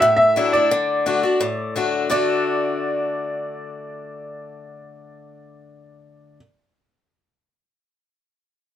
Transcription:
0.00 A2 E5
0.17 E5
0.36 F#3 A3 D4 E4
0.53 D4 E4 D5
0.71 D3
1.06 D3 A3 D4 F#4
1.23 D4 F#4
1.41 A2
1.76 D3 A3 D4 F#4
2.10 D3 A3 D4 F#4 D5

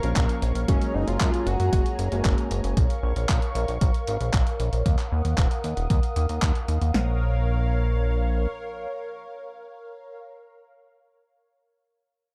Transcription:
Already playing: A#4 C#5 F5 C#6
0.03 A#1 F3 A#3 C#4 F4, closed hi-hat
0.16 A#1, kick, clap, closed hi-hat
0.29 closed hi-hat
0.42 A#1, closed hi-hat
0.55 A#1, closed hi-hat
0.68 F#1 F#3 G#3 A#3 C#4 G#4 C#5 G#5 A#5, kick, closed hi-hat
0.82 closed hi-hat
0.94 F#1 D#4
1.07 F#1 F4, closed hi-hat
1.20 F#2, kick, clap, closed hi-hat
1.34 closed hi-hat
1.47 F#1 F#4, closed hi-hat
1.60 F#2, closed hi-hat
1.73 F#1, kick, closed hi-hat
1.86 closed hi-hat
1.99 F#1, closed hi-hat
2.12 F#1 G#3 A#3 C#4 F#4, closed hi-hat
2.25 F#1, kick, clap, closed hi-hat
2.38 closed hi-hat
2.51 F#1, closed hi-hat
2.64 F#1, closed hi-hat
2.77 A#1 A#4 F5 C#6, kick, closed hi-hat
2.90 closed hi-hat
3.03 A#1
3.16 A#1, closed hi-hat
3.29 A#1, kick, clap, closed hi-hat
3.42 closed hi-hat
3.55 A#1, closed hi-hat
3.68 A#1, closed hi-hat
3.81 A#1, kick, closed hi-hat
3.94 closed hi-hat
4.07 G#1, closed hi-hat
4.21 A#1, closed hi-hat
4.33 A#1, kick, clap, closed hi-hat
4.47 closed hi-hat
4.60 A#1, closed hi-hat
4.73 A#1, closed hi-hat
4.86 D#2 A#4 F#5 D#6, kick, closed hi-hat
4.99 clap, closed hi-hat
5.12 D#2
5.25 D#2, closed hi-hat
5.38 D#1, kick, clap, closed hi-hat
5.51 closed hi-hat
5.64 D#2, closed hi-hat
5.77 D#1, closed hi-hat
5.90 D#2, kick, closed hi-hat
6.03 closed hi-hat
6.16 D#2, closed hi-hat
6.29 D#2, closed hi-hat
6.42 D#2, kick, clap, closed hi-hat
6.55 closed hi-hat
6.68 D#2, closed hi-hat
6.81 D#2, closed hi-hat
6.94 A#1 A#4 C#5 F5, snare

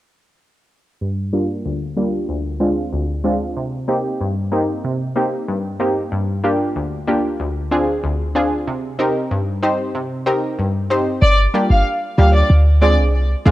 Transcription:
1.01 G2
1.33 G3 A#3 D4 F4
1.65 D2
1.97 G3 A#3 D4 F4
2.29 D2
2.60 G#3 C4 D4 F4
2.93 D2
3.24 G#3 C4 D4 F4
3.57 C3
3.88 A#3 C4 D#4 G4
4.21 G2
4.52 A#3 C4 D#4 G4
4.84 C3
5.16 A#3 C4 D#4 G4
5.48 G2
5.80 A#3 C4 D#4 G4
6.12 G2
6.44 A#3 D4 F4 G4
6.76 D2
7.07 A#3 D4 F4 G4
7.40 D2
7.71 C4 D4 F4 G#4
8.04 D2
8.35 C4 D4 F4 G#4
8.67 C3
8.99 C4 D#4 G4 A#4
9.31 G2
9.63 C4 D#4 G4 C5
9.95 C3
10.26 C4 D#4 G4 A#4
10.59 G2
10.90 C4 D#4 G4 C5
11.22 G1 D5
11.54 G3 A#3 D4 F4 G4
11.70 G1 F5
12.18 D2 G3 A#3 D4 F4 G4 F5
12.34 D5
12.50 D2
12.82 G#3 C4 D4 F4 G#4 D5
12.98 C2
13.46 D2 G#3 C4 D4 F4 G#4

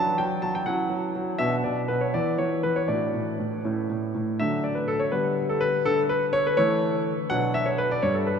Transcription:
Already playing: F#3 D4 A5
0.18 F#3 G5
0.42 F#3 A5
0.55 G5
0.66 F#3 C#4 E4 F#5
0.90 F#3
1.15 F#3
1.38 B2 B3 D4 E5
1.64 B2 D5
1.88 B2 B4
2.01 C#5
2.14 E3 B3 E4 D5
2.38 E3 C#5
2.63 E3 B4
2.76 C#5
2.88 A2 D4 F#4 D5
3.14 A2
3.39 A2
3.65 A2 C#4 E4
3.90 A2
4.15 A2
4.39 D3 F#3 A3 D4 E5
4.64 D5
4.75 B4
4.88 A4
4.99 C#5
5.12 D3 G3 B3 D4 B4
5.49 A4
5.61 B4
5.85 D3 A4
6.09 B4
6.33 C#5
6.47 B4
6.57 E3 A3 E4 C#5
7.30 B2 F#3 B3 D4 F#5
7.54 E5
7.66 C#5
7.78 B4
7.91 D5
8.02 G2 G3 D4 C#5
8.14 A4
8.27 B4

